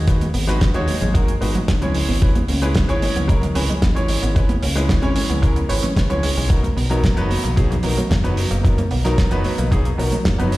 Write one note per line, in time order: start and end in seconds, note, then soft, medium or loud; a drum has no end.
0.00 0.27 D#2 medium
0.07 0.15 F#3 medium
0.07 0.23 G#3 medium
0.07 0.23 D#4 medium
0.07 0.23 F#4 medium
0.07 0.23 B4 medium
0.07 kick loud
0.07 closed hi-hat medium
0.21 0.28 G#3 medium
0.21 closed hi-hat medium
0.21 high conga medium
0.34 0.67 G#1 loud
0.34 0.42 B3 medium
0.34 open hi-hat loud
0.47 0.55 F#3 medium
0.47 0.71 G#3 medium
0.47 0.71 D#4 medium
0.47 0.72 F#4 medium
0.47 0.72 B4 loud
0.47 snare soft
0.47 closed hi-hat medium
0.61 0.68 G#3 medium
0.61 kick loud
0.61 snare loud
0.61 closed hi-hat medium
0.74 0.87 D#2 medium
0.74 1.11 G#3 loud
0.74 0.79 B3 medium
0.74 1.12 D#4 medium
0.74 1.12 F#4 medium
0.74 1.12 C#5 loud
0.74 closed hi-hat soft
0.87 0.95 F#3 medium
0.87 muted fingered electric bass stroke soft
0.87 open hi-hat loud
0.87 high conga medium
1.01 1.34 G#1 medium
1.01 1.06 G#3 medium
1.01 closed hi-hat soft
1.01 low conga medium
1.14 1.22 F#3 medium
1.14 1.30 G#3 medium
1.14 1.30 D#4 medium
1.14 1.30 F#4 medium
1.14 1.30 A#4 medium
1.14 kick loud
1.14 closed hi-hat medium
1.28 1.36 G#3 medium
1.28 closed hi-hat medium
1.41 1.55 G#1 medium
1.41 1.56 G#3 medium
1.41 1.49 B3 medium
1.41 1.57 D#4 medium
1.41 1.57 F#4 medium
1.41 1.57 B4 medium
1.41 open hi-hat loud
1.55 1.62 F#3 medium
1.55 muted fingered electric bass stroke soft
1.55 closed hi-hat medium
1.55 high conga loud
1.55 low conga medium
1.68 2.01 C#2 loud
1.68 1.76 G#3 medium
1.68 kick loud
1.68 snare loud
1.68 closed hi-hat medium
1.81 2.18 G#3 medium
1.81 1.86 B3 medium
1.81 2.19 C#4 medium
1.81 2.19 E4 medium
1.81 2.19 C#5 medium
1.81 closed hi-hat medium
1.81 low conga medium
1.94 2.03 G#3 medium
1.94 open hi-hat loud
2.09 2.41 G#1 medium
2.09 2.13 B3 medium
2.09 open hi-hat medium
2.22 2.37 G#3 medium
2.22 2.29 G#3 medium
2.22 2.37 C#4 medium
2.22 2.37 E4 medium
2.22 2.37 B4 medium
2.22 kick loud
2.22 closed hi-hat medium
2.35 2.43 B3 medium
2.35 closed hi-hat medium
2.35 high conga medium
2.48 2.81 C#2 loud
2.48 2.56 C#4 medium
2.48 open hi-hat loud
2.62 2.86 G#3 medium
2.62 2.70 G#3 medium
2.62 2.86 C#4 medium
2.62 2.86 E4 medium
2.62 2.86 B4 loud
2.62 closed hi-hat medium
2.75 2.83 B3 medium
2.75 kick loud
2.75 snare loud
2.75 closed hi-hat medium
2.89 3.06 G#1 medium
2.89 3.26 G#3 medium
2.89 3.26 C#4 medium
2.89 2.93 C#4 medium
2.89 3.26 E4 medium
2.89 3.26 C#5 loud
2.89 closed hi-hat medium
3.02 3.10 G#3 medium
3.02 open hi-hat loud
3.02 high conga medium
3.16 3.48 C#2 medium
3.16 3.20 B3 medium
3.16 closed hi-hat soft
3.16 low conga medium
3.28 3.44 G#3 medium
3.28 3.37 G#3 medium
3.28 3.44 C#4 medium
3.28 3.44 E4 medium
3.28 3.44 A#4 loud
3.28 kick loud
3.28 closed hi-hat medium
3.42 3.50 B3 medium
3.42 closed hi-hat medium
3.42 low conga medium
3.55 3.69 C#2 medium
3.55 3.70 G#3 medium
3.55 3.71 C#4 medium
3.55 3.63 C#4 medium
3.55 3.71 E4 medium
3.55 3.71 B4 medium
3.55 open hi-hat loud
3.69 3.77 G#3 medium
3.69 muted fingered electric bass stroke soft
3.69 closed hi-hat medium
3.69 high conga loud
3.69 low conga medium
3.82 4.15 G#1 loud
3.82 3.90 B3 medium
3.82 kick loud
3.82 snare loud
3.82 closed hi-hat medium
3.95 4.32 G#3 medium
3.95 4.32 C#4 medium
3.95 4.00 C#4 medium
3.95 4.33 E4 medium
3.95 4.33 C#5 medium
3.95 closed hi-hat medium
4.08 4.17 G#3 medium
4.08 open hi-hat loud
4.23 4.55 G#1 medium
4.23 4.27 B3 medium
4.23 closed hi-hat medium
4.35 4.51 G#3 medium
4.35 4.44 G#3 medium
4.35 4.51 C#4 medium
4.35 4.51 E4 medium
4.35 4.51 B4 medium
4.35 kick loud
4.35 closed hi-hat medium
4.49 4.57 B3 medium
4.49 closed hi-hat medium
4.49 high conga loud
4.63 4.95 C#2 medium
4.63 4.70 C#4 medium
4.63 open hi-hat loud
4.75 4.99 G#3 medium
4.75 4.84 G#3 medium
4.75 5.00 C#4 medium
4.75 5.00 E4 medium
4.75 5.00 B4 medium
4.75 snare soft
4.75 closed hi-hat soft
4.89 4.97 B3 medium
4.89 kick loud
4.89 snare loud
4.89 closed hi-hat medium
5.02 5.16 G#1 medium
5.02 5.39 G#3 medium
5.02 5.39 C#4 medium
5.02 5.07 C#4 medium
5.02 5.40 E4 medium
5.02 5.40 C#5 loud
5.02 closed hi-hat soft
5.16 5.24 G#3 medium
5.16 muted fingered electric bass stroke soft
5.16 open hi-hat loud
5.16 high conga medium
5.29 5.62 C#2 medium
5.29 5.34 B3 medium
5.29 closed hi-hat soft
5.29 low conga medium
5.42 5.58 G#3 medium
5.42 5.50 G#3 medium
5.42 5.58 C#4 medium
5.42 5.58 E4 medium
5.42 5.59 A#4 medium
5.42 kick loud
5.42 closed hi-hat medium
5.56 5.64 B3 medium
5.56 closed hi-hat soft
5.69 5.79 G#1 medium
5.69 5.85 G#3 medium
5.69 5.85 C#4 medium
5.69 5.85 E4 medium
5.69 5.85 B4 medium
5.69 5.77 C#5 medium
5.69 open hi-hat loud
5.83 5.91 C#4 medium
5.83 muted fingered electric bass stroke soft
5.83 closed hi-hat medium
5.83 high conga loud
5.83 low conga medium
5.96 6.29 C#2 loud
5.96 6.01 G#3 medium
5.96 kick loud
5.96 snare loud
5.96 closed hi-hat medium
6.10 6.47 G#3 medium
6.10 6.14 B3 medium
6.10 6.47 C#4 medium
6.10 6.47 E4 medium
6.10 6.47 C#5 medium
6.10 closed hi-hat soft
6.10 low conga medium
6.23 6.31 G#3 loud
6.23 open hi-hat loud
6.37 6.70 B1 loud
6.37 6.44 G#3 medium
6.37 open hi-hat medium
6.49 6.65 F#3 medium
6.49 6.58 F#3 medium
6.49 6.65 B3 medium
6.49 6.65 D#4 medium
6.49 6.65 A#4 medium
6.49 kick loud
6.49 closed hi-hat medium
6.63 6.71 A#3 medium
6.63 closed hi-hat medium
6.63 high conga medium
6.77 7.10 B1 medium
6.77 6.84 B3 medium
6.77 open hi-hat loud
6.90 7.14 F#3 medium
6.90 6.98 F#3 medium
6.90 7.14 B3 medium
6.90 7.14 D#4 medium
6.90 7.14 A#4 loud
6.90 closed hi-hat soft
7.04 7.11 A#3 medium
7.04 kick loud
7.04 snare loud
7.04 closed hi-hat medium
7.17 7.34 F#1 medium
7.17 7.54 F#3 loud
7.17 7.54 B3 medium
7.17 7.21 B3 medium
7.17 7.54 D#4 medium
7.17 7.54 B4 loud
7.17 closed hi-hat soft
7.30 7.38 F#3 medium
7.30 open hi-hat loud
7.30 high conga medium
7.44 7.77 B1 medium
7.44 7.48 A#3 medium
7.44 closed hi-hat medium
7.44 low conga medium
7.56 7.72 F#3 medium
7.56 7.65 F#3 medium
7.56 7.72 B3 medium
7.56 7.73 D#4 medium
7.56 7.73 G#4 medium
7.56 kick loud
7.56 closed hi-hat medium
7.71 7.78 A#3 medium
7.71 closed hi-hat medium
7.71 low conga medium
7.83 7.97 B1 medium
7.83 7.99 F#3 medium
7.83 7.92 B3 medium
7.83 7.99 B3 medium
7.83 7.99 D#4 medium
7.83 7.99 A#4 medium
7.83 open hi-hat loud
7.97 8.05 F#3 medium
7.97 muted fingered electric bass stroke soft
7.97 closed hi-hat medium
7.97 high conga medium
7.97 low conga medium
8.10 8.44 F#1 loud
8.10 8.18 A#3 medium
8.10 kick loud
8.10 snare loud
8.10 closed hi-hat medium
8.24 8.61 F#3 medium
8.24 8.61 B3 medium
8.24 8.29 B3 medium
8.24 8.61 D#4 medium
8.24 8.61 B4 medium
8.24 closed hi-hat medium
8.37 8.45 F#3 medium
8.37 open hi-hat loud
8.51 8.84 F#1 medium
8.51 8.55 A#3 medium
8.51 closed hi-hat soft
8.64 8.79 F#3 medium
8.64 8.72 F#3 medium
8.64 8.79 B3 medium
8.64 8.80 D#4 medium
8.64 8.80 A#4 medium
8.64 kick loud
8.64 closed hi-hat medium
8.78 8.85 A#3 medium
8.78 closed hi-hat medium
8.78 high conga medium
8.91 9.24 B1 medium
8.91 8.99 B3 medium
8.91 open hi-hat medium
9.04 9.28 F#3 medium
9.04 9.12 F#3 medium
9.04 9.28 B3 medium
9.04 9.29 D#4 medium
9.04 9.29 A#4 medium
9.04 snare soft
9.04 closed hi-hat medium
9.18 9.26 A#3 medium
9.18 kick loud
9.18 snare loud
9.18 closed hi-hat medium
9.31 9.44 F#1 medium
9.31 9.68 F#3 loud
9.31 9.68 B3 medium
9.31 9.36 B3 medium
9.31 9.69 D#4 medium
9.31 9.69 B4 loud
9.31 closed hi-hat medium
9.44 9.53 F#3 medium
9.44 muted fingered electric bass stroke soft
9.44 open hi-hat medium
9.44 high conga medium
9.58 9.91 B1 medium
9.58 9.63 A#3 medium
9.58 closed hi-hat medium
9.58 low conga medium
9.71 9.87 F#3 medium
9.71 9.79 F#3 medium
9.71 9.87 B3 medium
9.71 9.87 D#4 medium
9.71 9.87 G#4 loud
9.71 kick loud
9.71 closed hi-hat medium
9.85 9.93 A#3 medium
9.85 closed hi-hat soft
9.98 10.11 B1 medium
9.98 10.13 F#3 medium
9.98 10.14 B3 medium
9.98 10.06 B3 medium
9.98 10.14 D#4 medium
9.98 10.14 A#4 medium
9.98 open hi-hat loud
10.12 10.19 F#3 medium
10.12 muted fingered electric bass stroke soft
10.12 closed hi-hat medium
10.12 high conga medium
10.12 low conga medium
10.25 10.57 F#1 loud
10.25 10.33 A#3 medium
10.25 kick loud
10.25 snare loud
10.25 closed hi-hat medium
10.38 10.57 F#3 medium
10.38 10.57 B3 medium
10.38 10.43 B3 medium
10.38 10.57 D#4 medium
10.38 10.57 B4 medium
10.38 closed hi-hat medium
10.38 low conga medium
10.52 10.57 F#3 medium
10.52 open hi-hat loud